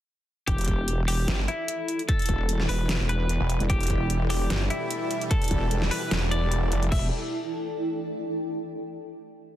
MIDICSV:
0, 0, Header, 1, 7, 480
1, 0, Start_track
1, 0, Key_signature, 1, "minor"
1, 0, Tempo, 402685
1, 566, Time_signature, 4, 2, 24, 8
1, 11398, End_track
2, 0, Start_track
2, 0, Title_t, "Ambient pad"
2, 0, Program_c, 0, 92
2, 566, Note_on_c, 0, 64, 84
2, 714, Note_on_c, 0, 69, 80
2, 1225, Note_on_c, 0, 74, 93
2, 2429, Note_on_c, 0, 79, 92
2, 5380, Note_on_c, 0, 81, 88
2, 5530, Note_off_c, 0, 79, 0
2, 8232, Note_off_c, 0, 64, 0
2, 8246, Note_off_c, 0, 74, 0
2, 8246, Note_off_c, 0, 81, 0
2, 8247, Note_off_c, 0, 69, 0
2, 11398, End_track
3, 0, Start_track
3, 0, Title_t, "Clean electric guitar"
3, 0, Program_c, 1, 27
3, 567, Note_on_c, 1, 67, 104
3, 1198, Note_off_c, 1, 67, 0
3, 1287, Note_on_c, 1, 67, 88
3, 1664, Note_off_c, 1, 67, 0
3, 1767, Note_on_c, 1, 64, 99
3, 2398, Note_off_c, 1, 64, 0
3, 2487, Note_on_c, 1, 69, 100
3, 3118, Note_off_c, 1, 69, 0
3, 3206, Note_on_c, 1, 71, 88
3, 3583, Note_off_c, 1, 71, 0
3, 3687, Note_on_c, 1, 71, 100
3, 4318, Note_off_c, 1, 71, 0
3, 4406, Note_on_c, 1, 67, 98
3, 5038, Note_off_c, 1, 67, 0
3, 5127, Note_on_c, 1, 67, 85
3, 5503, Note_off_c, 1, 67, 0
3, 5607, Note_on_c, 1, 64, 94
3, 6238, Note_off_c, 1, 64, 0
3, 6327, Note_on_c, 1, 69, 98
3, 6958, Note_off_c, 1, 69, 0
3, 7046, Note_on_c, 1, 71, 89
3, 7423, Note_off_c, 1, 71, 0
3, 7526, Note_on_c, 1, 74, 100
3, 8158, Note_off_c, 1, 74, 0
3, 8246, Note_on_c, 1, 76, 95
3, 8429, Note_off_c, 1, 76, 0
3, 11398, End_track
4, 0, Start_track
4, 0, Title_t, "Supersaw synth"
4, 0, Program_c, 2, 81
4, 4406, Note_on_c, 2, 47, 79
4, 4406, Note_on_c, 2, 52, 77
4, 4406, Note_on_c, 2, 55, 77
4, 4406, Note_on_c, 2, 64, 74
4, 4406, Note_on_c, 2, 67, 93
4, 8208, Note_off_c, 2, 47, 0
4, 8208, Note_off_c, 2, 52, 0
4, 8208, Note_off_c, 2, 55, 0
4, 8208, Note_off_c, 2, 64, 0
4, 8208, Note_off_c, 2, 67, 0
4, 8246, Note_on_c, 2, 47, 72
4, 8246, Note_on_c, 2, 52, 70
4, 8246, Note_on_c, 2, 55, 69
4, 8246, Note_on_c, 2, 64, 65
4, 8246, Note_on_c, 2, 67, 83
4, 8469, Note_off_c, 2, 52, 0
4, 8469, Note_off_c, 2, 55, 0
4, 8469, Note_off_c, 2, 67, 0
4, 8470, Note_off_c, 2, 47, 0
4, 8470, Note_off_c, 2, 64, 0
4, 11398, End_track
5, 0, Start_track
5, 0, Title_t, "Detuned saw bass"
5, 0, Program_c, 3, 39
5, 1526, Note_on_c, 3, 31, 98
5, 1749, Note_off_c, 3, 31, 0
5, 4056, Note_on_c, 3, 28, 94
5, 4275, Note_off_c, 3, 28, 0
5, 5367, Note_on_c, 3, 31, 92
5, 5589, Note_off_c, 3, 31, 0
5, 7286, Note_on_c, 3, 28, 94
5, 7989, Note_off_c, 3, 28, 0
5, 8007, Note_on_c, 3, 29, 100
5, 8229, Note_off_c, 3, 29, 0
5, 11398, End_track
6, 0, Start_track
6, 0, Title_t, "Wobble bass"
6, 0, Program_c, 4, 39
6, 566, Note_on_c, 4, 28, 101
6, 1509, Note_off_c, 4, 28, 0
6, 2727, Note_on_c, 4, 28, 106
6, 3189, Note_off_c, 4, 28, 0
6, 3206, Note_on_c, 4, 28, 96
6, 3555, Note_off_c, 4, 28, 0
6, 3576, Note_on_c, 4, 28, 100
6, 4035, Note_off_c, 4, 28, 0
6, 4296, Note_on_c, 4, 28, 97
6, 4389, Note_off_c, 4, 28, 0
6, 4406, Note_on_c, 4, 28, 94
6, 5349, Note_off_c, 4, 28, 0
6, 6567, Note_on_c, 4, 28, 101
6, 7029, Note_off_c, 4, 28, 0
6, 8246, Note_on_c, 4, 28, 99
6, 8470, Note_off_c, 4, 28, 0
6, 11398, End_track
7, 0, Start_track
7, 0, Title_t, "Drums"
7, 566, Note_on_c, 9, 36, 122
7, 567, Note_on_c, 9, 42, 85
7, 686, Note_off_c, 9, 36, 0
7, 686, Note_off_c, 9, 42, 0
7, 696, Note_on_c, 9, 42, 54
7, 727, Note_off_c, 9, 42, 0
7, 727, Note_on_c, 9, 42, 70
7, 770, Note_off_c, 9, 42, 0
7, 770, Note_on_c, 9, 42, 86
7, 806, Note_on_c, 9, 36, 65
7, 807, Note_off_c, 9, 42, 0
7, 807, Note_on_c, 9, 42, 54
7, 926, Note_off_c, 9, 36, 0
7, 926, Note_off_c, 9, 42, 0
7, 1047, Note_on_c, 9, 42, 81
7, 1166, Note_off_c, 9, 42, 0
7, 1287, Note_on_c, 9, 46, 96
7, 1406, Note_off_c, 9, 46, 0
7, 1527, Note_on_c, 9, 38, 125
7, 1527, Note_on_c, 9, 42, 85
7, 1646, Note_off_c, 9, 38, 0
7, 1646, Note_off_c, 9, 42, 0
7, 1767, Note_on_c, 9, 42, 53
7, 1886, Note_off_c, 9, 42, 0
7, 2006, Note_on_c, 9, 42, 85
7, 2126, Note_off_c, 9, 42, 0
7, 2246, Note_on_c, 9, 42, 55
7, 2366, Note_off_c, 9, 42, 0
7, 2376, Note_on_c, 9, 42, 38
7, 2486, Note_off_c, 9, 42, 0
7, 2486, Note_on_c, 9, 36, 127
7, 2486, Note_on_c, 9, 42, 81
7, 2605, Note_off_c, 9, 42, 0
7, 2606, Note_off_c, 9, 36, 0
7, 2615, Note_on_c, 9, 42, 55
7, 2646, Note_off_c, 9, 42, 0
7, 2646, Note_on_c, 9, 42, 72
7, 2689, Note_off_c, 9, 42, 0
7, 2689, Note_on_c, 9, 42, 86
7, 2726, Note_off_c, 9, 42, 0
7, 2726, Note_on_c, 9, 36, 65
7, 2726, Note_on_c, 9, 42, 57
7, 2845, Note_off_c, 9, 42, 0
7, 2846, Note_off_c, 9, 36, 0
7, 2966, Note_on_c, 9, 42, 86
7, 3085, Note_off_c, 9, 42, 0
7, 3096, Note_on_c, 9, 38, 38
7, 3206, Note_on_c, 9, 46, 90
7, 3215, Note_off_c, 9, 38, 0
7, 3325, Note_off_c, 9, 46, 0
7, 3446, Note_on_c, 9, 38, 127
7, 3446, Note_on_c, 9, 42, 84
7, 3565, Note_off_c, 9, 38, 0
7, 3565, Note_off_c, 9, 42, 0
7, 3686, Note_on_c, 9, 42, 58
7, 3806, Note_off_c, 9, 42, 0
7, 3927, Note_on_c, 9, 42, 84
7, 4046, Note_off_c, 9, 42, 0
7, 4167, Note_on_c, 9, 42, 53
7, 4286, Note_off_c, 9, 42, 0
7, 4296, Note_on_c, 9, 42, 40
7, 4406, Note_on_c, 9, 36, 127
7, 4407, Note_off_c, 9, 42, 0
7, 4407, Note_on_c, 9, 42, 79
7, 4526, Note_off_c, 9, 36, 0
7, 4526, Note_off_c, 9, 42, 0
7, 4536, Note_on_c, 9, 42, 51
7, 4566, Note_off_c, 9, 42, 0
7, 4566, Note_on_c, 9, 42, 67
7, 4610, Note_off_c, 9, 42, 0
7, 4610, Note_on_c, 9, 42, 83
7, 4646, Note_on_c, 9, 36, 65
7, 4647, Note_off_c, 9, 42, 0
7, 4647, Note_on_c, 9, 42, 54
7, 4765, Note_off_c, 9, 36, 0
7, 4766, Note_off_c, 9, 42, 0
7, 4887, Note_on_c, 9, 42, 77
7, 5006, Note_off_c, 9, 42, 0
7, 5126, Note_on_c, 9, 46, 93
7, 5246, Note_off_c, 9, 46, 0
7, 5367, Note_on_c, 9, 38, 127
7, 5367, Note_on_c, 9, 42, 89
7, 5486, Note_off_c, 9, 38, 0
7, 5486, Note_off_c, 9, 42, 0
7, 5607, Note_on_c, 9, 42, 55
7, 5726, Note_off_c, 9, 42, 0
7, 5847, Note_on_c, 9, 42, 82
7, 5966, Note_off_c, 9, 42, 0
7, 6087, Note_on_c, 9, 42, 52
7, 6206, Note_off_c, 9, 42, 0
7, 6216, Note_on_c, 9, 42, 39
7, 6327, Note_off_c, 9, 42, 0
7, 6327, Note_on_c, 9, 36, 127
7, 6327, Note_on_c, 9, 42, 79
7, 6446, Note_off_c, 9, 36, 0
7, 6446, Note_off_c, 9, 42, 0
7, 6456, Note_on_c, 9, 42, 51
7, 6487, Note_off_c, 9, 42, 0
7, 6487, Note_on_c, 9, 42, 65
7, 6530, Note_off_c, 9, 42, 0
7, 6530, Note_on_c, 9, 42, 83
7, 6566, Note_on_c, 9, 36, 65
7, 6567, Note_off_c, 9, 42, 0
7, 6567, Note_on_c, 9, 42, 53
7, 6686, Note_off_c, 9, 36, 0
7, 6686, Note_off_c, 9, 42, 0
7, 6807, Note_on_c, 9, 42, 74
7, 6926, Note_off_c, 9, 42, 0
7, 6936, Note_on_c, 9, 38, 39
7, 7047, Note_on_c, 9, 46, 88
7, 7056, Note_off_c, 9, 38, 0
7, 7166, Note_off_c, 9, 46, 0
7, 7287, Note_on_c, 9, 38, 127
7, 7287, Note_on_c, 9, 42, 82
7, 7406, Note_off_c, 9, 38, 0
7, 7406, Note_off_c, 9, 42, 0
7, 7527, Note_on_c, 9, 42, 53
7, 7647, Note_off_c, 9, 42, 0
7, 7767, Note_on_c, 9, 42, 81
7, 7886, Note_off_c, 9, 42, 0
7, 8007, Note_on_c, 9, 42, 54
7, 8126, Note_off_c, 9, 42, 0
7, 8136, Note_on_c, 9, 42, 38
7, 8246, Note_on_c, 9, 36, 122
7, 8247, Note_on_c, 9, 49, 85
7, 8256, Note_off_c, 9, 42, 0
7, 8366, Note_off_c, 9, 36, 0
7, 8366, Note_off_c, 9, 49, 0
7, 11398, End_track
0, 0, End_of_file